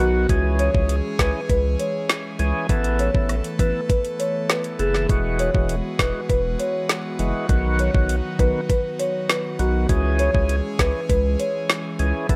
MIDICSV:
0, 0, Header, 1, 6, 480
1, 0, Start_track
1, 0, Tempo, 600000
1, 235, Time_signature, 4, 2, 24, 8
1, 9886, End_track
2, 0, Start_track
2, 0, Title_t, "Marimba"
2, 0, Program_c, 0, 12
2, 0, Note_on_c, 0, 66, 86
2, 92, Note_off_c, 0, 66, 0
2, 475, Note_on_c, 0, 73, 85
2, 572, Note_off_c, 0, 73, 0
2, 955, Note_on_c, 0, 71, 83
2, 1052, Note_off_c, 0, 71, 0
2, 1195, Note_on_c, 0, 71, 100
2, 1292, Note_off_c, 0, 71, 0
2, 1435, Note_on_c, 0, 73, 78
2, 1532, Note_off_c, 0, 73, 0
2, 2396, Note_on_c, 0, 73, 72
2, 2493, Note_off_c, 0, 73, 0
2, 2873, Note_on_c, 0, 71, 87
2, 2971, Note_off_c, 0, 71, 0
2, 3114, Note_on_c, 0, 71, 86
2, 3211, Note_off_c, 0, 71, 0
2, 3355, Note_on_c, 0, 73, 83
2, 3453, Note_off_c, 0, 73, 0
2, 3595, Note_on_c, 0, 71, 76
2, 3693, Note_off_c, 0, 71, 0
2, 3835, Note_on_c, 0, 68, 84
2, 3933, Note_off_c, 0, 68, 0
2, 4315, Note_on_c, 0, 73, 84
2, 4412, Note_off_c, 0, 73, 0
2, 4794, Note_on_c, 0, 71, 83
2, 4892, Note_off_c, 0, 71, 0
2, 5035, Note_on_c, 0, 71, 99
2, 5132, Note_off_c, 0, 71, 0
2, 5276, Note_on_c, 0, 73, 81
2, 5373, Note_off_c, 0, 73, 0
2, 6235, Note_on_c, 0, 73, 72
2, 6332, Note_off_c, 0, 73, 0
2, 6715, Note_on_c, 0, 71, 86
2, 6812, Note_off_c, 0, 71, 0
2, 6953, Note_on_c, 0, 71, 87
2, 7051, Note_off_c, 0, 71, 0
2, 7195, Note_on_c, 0, 73, 84
2, 7292, Note_off_c, 0, 73, 0
2, 7435, Note_on_c, 0, 71, 75
2, 7532, Note_off_c, 0, 71, 0
2, 7675, Note_on_c, 0, 66, 88
2, 7772, Note_off_c, 0, 66, 0
2, 8155, Note_on_c, 0, 73, 87
2, 8253, Note_off_c, 0, 73, 0
2, 8635, Note_on_c, 0, 71, 86
2, 8732, Note_off_c, 0, 71, 0
2, 8875, Note_on_c, 0, 71, 101
2, 8973, Note_off_c, 0, 71, 0
2, 9116, Note_on_c, 0, 73, 83
2, 9213, Note_off_c, 0, 73, 0
2, 9886, End_track
3, 0, Start_track
3, 0, Title_t, "Tonewheel organ"
3, 0, Program_c, 1, 16
3, 0, Note_on_c, 1, 51, 81
3, 0, Note_on_c, 1, 59, 71
3, 0, Note_on_c, 1, 66, 90
3, 214, Note_off_c, 1, 51, 0
3, 215, Note_off_c, 1, 59, 0
3, 217, Note_off_c, 1, 66, 0
3, 233, Note_on_c, 1, 52, 99
3, 235, Note_on_c, 1, 61, 85
3, 238, Note_on_c, 1, 68, 107
3, 565, Note_off_c, 1, 52, 0
3, 566, Note_off_c, 1, 61, 0
3, 567, Note_off_c, 1, 68, 0
3, 592, Note_on_c, 1, 52, 76
3, 594, Note_on_c, 1, 61, 70
3, 597, Note_on_c, 1, 68, 85
3, 764, Note_off_c, 1, 52, 0
3, 765, Note_off_c, 1, 61, 0
3, 767, Note_off_c, 1, 68, 0
3, 952, Note_on_c, 1, 52, 82
3, 954, Note_on_c, 1, 61, 77
3, 957, Note_on_c, 1, 68, 93
3, 1124, Note_off_c, 1, 52, 0
3, 1125, Note_off_c, 1, 61, 0
3, 1127, Note_off_c, 1, 68, 0
3, 1912, Note_on_c, 1, 52, 81
3, 1915, Note_on_c, 1, 61, 71
3, 1917, Note_on_c, 1, 68, 90
3, 2134, Note_off_c, 1, 52, 0
3, 2135, Note_off_c, 1, 61, 0
3, 2137, Note_off_c, 1, 68, 0
3, 2152, Note_on_c, 1, 52, 94
3, 2155, Note_on_c, 1, 59, 86
3, 2157, Note_on_c, 1, 69, 107
3, 2485, Note_off_c, 1, 52, 0
3, 2486, Note_off_c, 1, 59, 0
3, 2487, Note_off_c, 1, 69, 0
3, 2512, Note_on_c, 1, 52, 75
3, 2515, Note_on_c, 1, 59, 70
3, 2517, Note_on_c, 1, 69, 88
3, 2684, Note_off_c, 1, 52, 0
3, 2686, Note_off_c, 1, 59, 0
3, 2687, Note_off_c, 1, 69, 0
3, 2872, Note_on_c, 1, 52, 81
3, 2874, Note_on_c, 1, 59, 74
3, 2877, Note_on_c, 1, 69, 88
3, 3044, Note_off_c, 1, 52, 0
3, 3046, Note_off_c, 1, 59, 0
3, 3047, Note_off_c, 1, 69, 0
3, 3832, Note_on_c, 1, 52, 80
3, 3834, Note_on_c, 1, 59, 73
3, 3836, Note_on_c, 1, 69, 86
3, 4054, Note_off_c, 1, 52, 0
3, 4055, Note_off_c, 1, 59, 0
3, 4056, Note_off_c, 1, 69, 0
3, 4071, Note_on_c, 1, 52, 95
3, 4073, Note_on_c, 1, 56, 89
3, 4076, Note_on_c, 1, 66, 104
3, 4404, Note_off_c, 1, 52, 0
3, 4405, Note_off_c, 1, 56, 0
3, 4407, Note_off_c, 1, 66, 0
3, 4431, Note_on_c, 1, 52, 77
3, 4434, Note_on_c, 1, 56, 70
3, 4436, Note_on_c, 1, 66, 86
3, 4604, Note_off_c, 1, 52, 0
3, 4605, Note_off_c, 1, 56, 0
3, 4606, Note_off_c, 1, 66, 0
3, 4792, Note_on_c, 1, 52, 79
3, 4794, Note_on_c, 1, 56, 74
3, 4797, Note_on_c, 1, 66, 86
3, 4964, Note_off_c, 1, 52, 0
3, 4966, Note_off_c, 1, 56, 0
3, 4967, Note_off_c, 1, 66, 0
3, 5752, Note_on_c, 1, 52, 80
3, 5755, Note_on_c, 1, 56, 76
3, 5757, Note_on_c, 1, 66, 88
3, 5974, Note_off_c, 1, 52, 0
3, 5976, Note_off_c, 1, 56, 0
3, 5977, Note_off_c, 1, 66, 0
3, 5992, Note_on_c, 1, 51, 97
3, 5994, Note_on_c, 1, 59, 91
3, 5996, Note_on_c, 1, 66, 107
3, 6325, Note_off_c, 1, 51, 0
3, 6326, Note_off_c, 1, 59, 0
3, 6327, Note_off_c, 1, 66, 0
3, 6352, Note_on_c, 1, 51, 74
3, 6355, Note_on_c, 1, 59, 71
3, 6357, Note_on_c, 1, 66, 84
3, 6524, Note_off_c, 1, 51, 0
3, 6526, Note_off_c, 1, 59, 0
3, 6527, Note_off_c, 1, 66, 0
3, 6712, Note_on_c, 1, 51, 84
3, 6715, Note_on_c, 1, 59, 76
3, 6717, Note_on_c, 1, 66, 93
3, 6884, Note_off_c, 1, 51, 0
3, 6886, Note_off_c, 1, 59, 0
3, 6887, Note_off_c, 1, 66, 0
3, 7672, Note_on_c, 1, 51, 78
3, 7675, Note_on_c, 1, 59, 74
3, 7677, Note_on_c, 1, 66, 83
3, 7894, Note_off_c, 1, 51, 0
3, 7896, Note_off_c, 1, 59, 0
3, 7897, Note_off_c, 1, 66, 0
3, 7912, Note_on_c, 1, 52, 92
3, 7914, Note_on_c, 1, 61, 89
3, 7917, Note_on_c, 1, 68, 108
3, 8245, Note_off_c, 1, 52, 0
3, 8246, Note_off_c, 1, 61, 0
3, 8247, Note_off_c, 1, 68, 0
3, 8273, Note_on_c, 1, 52, 79
3, 8275, Note_on_c, 1, 61, 69
3, 8277, Note_on_c, 1, 68, 86
3, 8445, Note_off_c, 1, 52, 0
3, 8446, Note_off_c, 1, 61, 0
3, 8447, Note_off_c, 1, 68, 0
3, 8632, Note_on_c, 1, 52, 82
3, 8634, Note_on_c, 1, 61, 75
3, 8636, Note_on_c, 1, 68, 87
3, 8804, Note_off_c, 1, 52, 0
3, 8805, Note_off_c, 1, 61, 0
3, 8807, Note_off_c, 1, 68, 0
3, 9592, Note_on_c, 1, 52, 77
3, 9595, Note_on_c, 1, 61, 72
3, 9597, Note_on_c, 1, 68, 90
3, 9814, Note_off_c, 1, 52, 0
3, 9816, Note_off_c, 1, 61, 0
3, 9817, Note_off_c, 1, 68, 0
3, 9832, Note_on_c, 1, 52, 99
3, 9835, Note_on_c, 1, 59, 88
3, 9837, Note_on_c, 1, 69, 102
3, 9886, Note_off_c, 1, 52, 0
3, 9886, Note_off_c, 1, 59, 0
3, 9886, Note_off_c, 1, 69, 0
3, 9886, End_track
4, 0, Start_track
4, 0, Title_t, "Analog synth pad"
4, 0, Program_c, 2, 89
4, 0, Note_on_c, 2, 51, 85
4, 0, Note_on_c, 2, 54, 75
4, 0, Note_on_c, 2, 59, 76
4, 0, Note_on_c, 2, 66, 96
4, 203, Note_off_c, 2, 66, 0
4, 216, Note_off_c, 2, 51, 0
4, 216, Note_off_c, 2, 54, 0
4, 216, Note_off_c, 2, 59, 0
4, 233, Note_on_c, 2, 68, 91
4, 234, Note_on_c, 2, 52, 87
4, 234, Note_on_c, 2, 56, 76
4, 234, Note_on_c, 2, 61, 75
4, 2135, Note_off_c, 2, 56, 0
4, 2135, Note_off_c, 2, 61, 0
4, 2135, Note_off_c, 2, 68, 0
4, 2154, Note_on_c, 2, 57, 75
4, 2154, Note_on_c, 2, 59, 73
4, 2155, Note_on_c, 2, 69, 94
4, 4055, Note_off_c, 2, 57, 0
4, 4056, Note_off_c, 2, 69, 0
4, 4073, Note_on_c, 2, 56, 74
4, 4073, Note_on_c, 2, 66, 93
4, 5962, Note_off_c, 2, 52, 0
4, 5975, Note_off_c, 2, 56, 0
4, 5993, Note_on_c, 2, 51, 83
4, 5994, Note_on_c, 2, 54, 77
4, 7882, Note_off_c, 2, 66, 0
4, 7883, Note_off_c, 2, 59, 0
4, 7895, Note_off_c, 2, 51, 0
4, 7895, Note_off_c, 2, 54, 0
4, 7914, Note_on_c, 2, 52, 81
4, 7914, Note_on_c, 2, 56, 80
4, 7914, Note_on_c, 2, 61, 75
4, 7914, Note_on_c, 2, 68, 97
4, 9815, Note_off_c, 2, 56, 0
4, 9815, Note_off_c, 2, 61, 0
4, 9815, Note_off_c, 2, 68, 0
4, 9835, Note_on_c, 2, 57, 77
4, 9835, Note_on_c, 2, 69, 90
4, 9836, Note_on_c, 2, 59, 78
4, 9886, Note_off_c, 2, 52, 0
4, 9886, Note_off_c, 2, 57, 0
4, 9886, Note_off_c, 2, 59, 0
4, 9886, Note_off_c, 2, 69, 0
4, 9886, End_track
5, 0, Start_track
5, 0, Title_t, "Analog synth bass"
5, 0, Program_c, 3, 38
5, 0, Note_on_c, 3, 35, 99
5, 207, Note_off_c, 3, 35, 0
5, 235, Note_on_c, 3, 37, 112
5, 553, Note_off_c, 3, 37, 0
5, 596, Note_on_c, 3, 37, 96
5, 807, Note_off_c, 3, 37, 0
5, 954, Note_on_c, 3, 37, 95
5, 1060, Note_off_c, 3, 37, 0
5, 1197, Note_on_c, 3, 37, 100
5, 1408, Note_off_c, 3, 37, 0
5, 1915, Note_on_c, 3, 37, 87
5, 2021, Note_off_c, 3, 37, 0
5, 2155, Note_on_c, 3, 33, 115
5, 2473, Note_off_c, 3, 33, 0
5, 2516, Note_on_c, 3, 33, 90
5, 2727, Note_off_c, 3, 33, 0
5, 2874, Note_on_c, 3, 33, 96
5, 2980, Note_off_c, 3, 33, 0
5, 3834, Note_on_c, 3, 30, 98
5, 4046, Note_off_c, 3, 30, 0
5, 4075, Note_on_c, 3, 28, 115
5, 4392, Note_off_c, 3, 28, 0
5, 4436, Note_on_c, 3, 28, 96
5, 4647, Note_off_c, 3, 28, 0
5, 4793, Note_on_c, 3, 28, 99
5, 4900, Note_off_c, 3, 28, 0
5, 5036, Note_on_c, 3, 28, 107
5, 5247, Note_off_c, 3, 28, 0
5, 5754, Note_on_c, 3, 30, 97
5, 5860, Note_off_c, 3, 30, 0
5, 5994, Note_on_c, 3, 35, 109
5, 6312, Note_off_c, 3, 35, 0
5, 6356, Note_on_c, 3, 35, 90
5, 6567, Note_off_c, 3, 35, 0
5, 6714, Note_on_c, 3, 35, 89
5, 6820, Note_off_c, 3, 35, 0
5, 7674, Note_on_c, 3, 35, 101
5, 7886, Note_off_c, 3, 35, 0
5, 7915, Note_on_c, 3, 37, 116
5, 8232, Note_off_c, 3, 37, 0
5, 8276, Note_on_c, 3, 37, 91
5, 8487, Note_off_c, 3, 37, 0
5, 8634, Note_on_c, 3, 37, 93
5, 8740, Note_off_c, 3, 37, 0
5, 8877, Note_on_c, 3, 37, 104
5, 9088, Note_off_c, 3, 37, 0
5, 9595, Note_on_c, 3, 37, 90
5, 9701, Note_off_c, 3, 37, 0
5, 9835, Note_on_c, 3, 33, 115
5, 9886, Note_off_c, 3, 33, 0
5, 9886, End_track
6, 0, Start_track
6, 0, Title_t, "Drums"
6, 235, Note_on_c, 9, 36, 108
6, 235, Note_on_c, 9, 42, 82
6, 315, Note_off_c, 9, 36, 0
6, 315, Note_off_c, 9, 42, 0
6, 474, Note_on_c, 9, 42, 78
6, 554, Note_off_c, 9, 42, 0
6, 596, Note_on_c, 9, 36, 102
6, 676, Note_off_c, 9, 36, 0
6, 715, Note_on_c, 9, 42, 85
6, 795, Note_off_c, 9, 42, 0
6, 954, Note_on_c, 9, 36, 104
6, 954, Note_on_c, 9, 38, 115
6, 955, Note_on_c, 9, 42, 70
6, 1034, Note_off_c, 9, 36, 0
6, 1034, Note_off_c, 9, 38, 0
6, 1035, Note_off_c, 9, 42, 0
6, 1196, Note_on_c, 9, 42, 74
6, 1197, Note_on_c, 9, 36, 91
6, 1276, Note_off_c, 9, 42, 0
6, 1277, Note_off_c, 9, 36, 0
6, 1436, Note_on_c, 9, 42, 78
6, 1516, Note_off_c, 9, 42, 0
6, 1676, Note_on_c, 9, 38, 112
6, 1676, Note_on_c, 9, 42, 76
6, 1756, Note_off_c, 9, 38, 0
6, 1756, Note_off_c, 9, 42, 0
6, 1914, Note_on_c, 9, 42, 65
6, 1994, Note_off_c, 9, 42, 0
6, 2155, Note_on_c, 9, 36, 107
6, 2155, Note_on_c, 9, 42, 80
6, 2235, Note_off_c, 9, 36, 0
6, 2235, Note_off_c, 9, 42, 0
6, 2275, Note_on_c, 9, 42, 59
6, 2355, Note_off_c, 9, 42, 0
6, 2394, Note_on_c, 9, 42, 77
6, 2474, Note_off_c, 9, 42, 0
6, 2516, Note_on_c, 9, 36, 103
6, 2596, Note_off_c, 9, 36, 0
6, 2634, Note_on_c, 9, 42, 80
6, 2635, Note_on_c, 9, 37, 69
6, 2714, Note_off_c, 9, 42, 0
6, 2715, Note_off_c, 9, 37, 0
6, 2755, Note_on_c, 9, 42, 61
6, 2835, Note_off_c, 9, 42, 0
6, 2874, Note_on_c, 9, 36, 100
6, 2875, Note_on_c, 9, 42, 72
6, 2954, Note_off_c, 9, 36, 0
6, 2955, Note_off_c, 9, 42, 0
6, 3117, Note_on_c, 9, 36, 94
6, 3117, Note_on_c, 9, 42, 76
6, 3197, Note_off_c, 9, 36, 0
6, 3197, Note_off_c, 9, 42, 0
6, 3236, Note_on_c, 9, 42, 49
6, 3316, Note_off_c, 9, 42, 0
6, 3357, Note_on_c, 9, 42, 78
6, 3437, Note_off_c, 9, 42, 0
6, 3596, Note_on_c, 9, 37, 88
6, 3596, Note_on_c, 9, 38, 113
6, 3596, Note_on_c, 9, 42, 76
6, 3676, Note_off_c, 9, 37, 0
6, 3676, Note_off_c, 9, 38, 0
6, 3676, Note_off_c, 9, 42, 0
6, 3714, Note_on_c, 9, 42, 65
6, 3794, Note_off_c, 9, 42, 0
6, 3834, Note_on_c, 9, 42, 65
6, 3914, Note_off_c, 9, 42, 0
6, 3955, Note_on_c, 9, 38, 60
6, 4035, Note_off_c, 9, 38, 0
6, 4075, Note_on_c, 9, 36, 109
6, 4075, Note_on_c, 9, 42, 81
6, 4155, Note_off_c, 9, 36, 0
6, 4155, Note_off_c, 9, 42, 0
6, 4313, Note_on_c, 9, 42, 79
6, 4393, Note_off_c, 9, 42, 0
6, 4436, Note_on_c, 9, 36, 106
6, 4516, Note_off_c, 9, 36, 0
6, 4554, Note_on_c, 9, 42, 88
6, 4634, Note_off_c, 9, 42, 0
6, 4793, Note_on_c, 9, 36, 97
6, 4794, Note_on_c, 9, 38, 119
6, 4795, Note_on_c, 9, 42, 69
6, 4873, Note_off_c, 9, 36, 0
6, 4874, Note_off_c, 9, 38, 0
6, 4875, Note_off_c, 9, 42, 0
6, 5036, Note_on_c, 9, 36, 92
6, 5036, Note_on_c, 9, 42, 73
6, 5116, Note_off_c, 9, 36, 0
6, 5116, Note_off_c, 9, 42, 0
6, 5276, Note_on_c, 9, 42, 76
6, 5356, Note_off_c, 9, 42, 0
6, 5515, Note_on_c, 9, 42, 78
6, 5516, Note_on_c, 9, 38, 112
6, 5595, Note_off_c, 9, 42, 0
6, 5596, Note_off_c, 9, 38, 0
6, 5754, Note_on_c, 9, 42, 66
6, 5834, Note_off_c, 9, 42, 0
6, 5994, Note_on_c, 9, 36, 105
6, 5994, Note_on_c, 9, 42, 79
6, 6074, Note_off_c, 9, 36, 0
6, 6074, Note_off_c, 9, 42, 0
6, 6233, Note_on_c, 9, 42, 77
6, 6313, Note_off_c, 9, 42, 0
6, 6356, Note_on_c, 9, 36, 108
6, 6436, Note_off_c, 9, 36, 0
6, 6474, Note_on_c, 9, 42, 83
6, 6554, Note_off_c, 9, 42, 0
6, 6713, Note_on_c, 9, 36, 98
6, 6715, Note_on_c, 9, 42, 69
6, 6793, Note_off_c, 9, 36, 0
6, 6795, Note_off_c, 9, 42, 0
6, 6956, Note_on_c, 9, 36, 93
6, 6956, Note_on_c, 9, 42, 78
6, 7036, Note_off_c, 9, 36, 0
6, 7036, Note_off_c, 9, 42, 0
6, 7196, Note_on_c, 9, 42, 79
6, 7276, Note_off_c, 9, 42, 0
6, 7436, Note_on_c, 9, 38, 115
6, 7436, Note_on_c, 9, 42, 82
6, 7516, Note_off_c, 9, 38, 0
6, 7516, Note_off_c, 9, 42, 0
6, 7674, Note_on_c, 9, 42, 66
6, 7754, Note_off_c, 9, 42, 0
6, 7914, Note_on_c, 9, 42, 78
6, 7915, Note_on_c, 9, 36, 104
6, 7994, Note_off_c, 9, 42, 0
6, 7995, Note_off_c, 9, 36, 0
6, 8153, Note_on_c, 9, 42, 79
6, 8233, Note_off_c, 9, 42, 0
6, 8276, Note_on_c, 9, 36, 102
6, 8356, Note_off_c, 9, 36, 0
6, 8394, Note_on_c, 9, 42, 83
6, 8474, Note_off_c, 9, 42, 0
6, 8634, Note_on_c, 9, 36, 104
6, 8634, Note_on_c, 9, 38, 114
6, 8635, Note_on_c, 9, 42, 74
6, 8714, Note_off_c, 9, 36, 0
6, 8714, Note_off_c, 9, 38, 0
6, 8715, Note_off_c, 9, 42, 0
6, 8876, Note_on_c, 9, 42, 76
6, 8877, Note_on_c, 9, 36, 94
6, 8956, Note_off_c, 9, 42, 0
6, 8957, Note_off_c, 9, 36, 0
6, 9116, Note_on_c, 9, 42, 77
6, 9196, Note_off_c, 9, 42, 0
6, 9356, Note_on_c, 9, 42, 74
6, 9357, Note_on_c, 9, 38, 111
6, 9436, Note_off_c, 9, 42, 0
6, 9437, Note_off_c, 9, 38, 0
6, 9594, Note_on_c, 9, 42, 64
6, 9674, Note_off_c, 9, 42, 0
6, 9835, Note_on_c, 9, 36, 109
6, 9835, Note_on_c, 9, 42, 77
6, 9886, Note_off_c, 9, 36, 0
6, 9886, Note_off_c, 9, 42, 0
6, 9886, End_track
0, 0, End_of_file